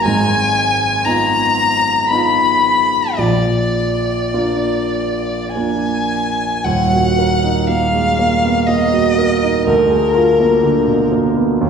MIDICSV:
0, 0, Header, 1, 3, 480
1, 0, Start_track
1, 0, Key_signature, -6, "minor"
1, 0, Tempo, 1022147
1, 21, Time_signature, 3, 2, 24, 8
1, 982, Tempo, 1090909
1, 1462, Tempo, 1142857
1, 1942, Tempo, 1214575
1, 2422, Tempo, 1117318
1, 2902, Tempo, 1013514
1, 4342, Tempo, 964630
1, 5338, End_track
2, 0, Start_track
2, 0, Title_t, "Violin"
2, 0, Program_c, 0, 40
2, 19, Note_on_c, 0, 80, 112
2, 488, Note_on_c, 0, 82, 104
2, 495, Note_off_c, 0, 80, 0
2, 977, Note_off_c, 0, 82, 0
2, 979, Note_on_c, 0, 83, 97
2, 1456, Note_on_c, 0, 74, 78
2, 1463, Note_off_c, 0, 83, 0
2, 2410, Note_off_c, 0, 74, 0
2, 2412, Note_on_c, 0, 80, 89
2, 2896, Note_on_c, 0, 78, 94
2, 2902, Note_off_c, 0, 80, 0
2, 3382, Note_on_c, 0, 77, 95
2, 3389, Note_off_c, 0, 78, 0
2, 3855, Note_on_c, 0, 75, 98
2, 3863, Note_off_c, 0, 77, 0
2, 4327, Note_off_c, 0, 75, 0
2, 4330, Note_on_c, 0, 70, 90
2, 5038, Note_off_c, 0, 70, 0
2, 5338, End_track
3, 0, Start_track
3, 0, Title_t, "Grand piano"
3, 0, Program_c, 1, 0
3, 0, Control_c, 1, 64, 127
3, 24, Note_on_c, 1, 32, 60
3, 25, Note_on_c, 1, 44, 63
3, 29, Control_c, 1, 64, 0
3, 93, Control_c, 1, 64, 127
3, 495, Note_on_c, 1, 59, 43
3, 495, Note_on_c, 1, 63, 49
3, 501, Note_on_c, 1, 65, 46
3, 963, Note_off_c, 1, 59, 0
3, 963, Note_off_c, 1, 63, 0
3, 966, Note_off_c, 1, 65, 0
3, 989, Note_on_c, 1, 59, 44
3, 992, Note_on_c, 1, 63, 49
3, 995, Note_on_c, 1, 65, 46
3, 1445, Note_off_c, 1, 32, 0
3, 1445, Note_off_c, 1, 44, 0
3, 1447, Note_off_c, 1, 59, 0
3, 1448, Note_off_c, 1, 63, 0
3, 1450, Note_off_c, 1, 65, 0
3, 1462, Note_on_c, 1, 34, 44
3, 1463, Note_on_c, 1, 46, 52
3, 1470, Control_c, 1, 64, 0
3, 1546, Control_c, 1, 64, 127
3, 1947, Note_on_c, 1, 62, 41
3, 1948, Note_on_c, 1, 65, 46
3, 1949, Note_on_c, 1, 58, 41
3, 2408, Note_off_c, 1, 62, 0
3, 2408, Note_off_c, 1, 65, 0
3, 2409, Note_off_c, 1, 58, 0
3, 2429, Note_on_c, 1, 58, 40
3, 2430, Note_on_c, 1, 62, 40
3, 2433, Note_on_c, 1, 65, 39
3, 2884, Note_off_c, 1, 34, 0
3, 2884, Note_off_c, 1, 46, 0
3, 2887, Note_off_c, 1, 58, 0
3, 2888, Note_off_c, 1, 62, 0
3, 2889, Note_off_c, 1, 65, 0
3, 2897, Note_on_c, 1, 27, 58
3, 2901, Note_on_c, 1, 39, 57
3, 2908, Control_c, 1, 64, 0
3, 2980, Control_c, 1, 64, 127
3, 3031, Note_on_c, 1, 66, 48
3, 3152, Note_on_c, 1, 70, 53
3, 3224, Note_off_c, 1, 66, 0
3, 3272, Note_on_c, 1, 63, 47
3, 3344, Note_off_c, 1, 70, 0
3, 3392, Note_on_c, 1, 58, 46
3, 3462, Note_off_c, 1, 63, 0
3, 3503, Note_on_c, 1, 56, 37
3, 3581, Note_off_c, 1, 58, 0
3, 3624, Note_off_c, 1, 56, 0
3, 3628, Note_on_c, 1, 58, 53
3, 3750, Note_on_c, 1, 59, 44
3, 3818, Note_off_c, 1, 58, 0
3, 3864, Note_on_c, 1, 58, 52
3, 3868, Note_off_c, 1, 59, 0
3, 3979, Note_on_c, 1, 66, 53
3, 4057, Note_off_c, 1, 58, 0
3, 4099, Note_on_c, 1, 70, 53
3, 4173, Note_off_c, 1, 66, 0
3, 4216, Note_on_c, 1, 63, 54
3, 4290, Note_off_c, 1, 70, 0
3, 4319, Note_off_c, 1, 27, 0
3, 4321, Note_off_c, 1, 39, 0
3, 4329, Note_on_c, 1, 38, 64
3, 4335, Note_off_c, 1, 63, 0
3, 4347, Control_c, 1, 64, 0
3, 4429, Control_c, 1, 64, 127
3, 4444, Note_on_c, 1, 68, 49
3, 4565, Note_on_c, 1, 65, 63
3, 4640, Note_off_c, 1, 68, 0
3, 4692, Note_on_c, 1, 58, 54
3, 4761, Note_off_c, 1, 65, 0
3, 4807, Note_on_c, 1, 50, 56
3, 4886, Note_off_c, 1, 58, 0
3, 4926, Note_on_c, 1, 47, 46
3, 5005, Note_off_c, 1, 50, 0
3, 5049, Note_on_c, 1, 58, 58
3, 5053, Note_off_c, 1, 47, 0
3, 5170, Note_on_c, 1, 59, 50
3, 5247, Note_off_c, 1, 58, 0
3, 5274, Note_off_c, 1, 38, 0
3, 5295, Note_off_c, 1, 59, 0
3, 5295, Note_on_c, 1, 39, 70
3, 5307, Control_c, 1, 64, 0
3, 5338, Note_off_c, 1, 39, 0
3, 5338, End_track
0, 0, End_of_file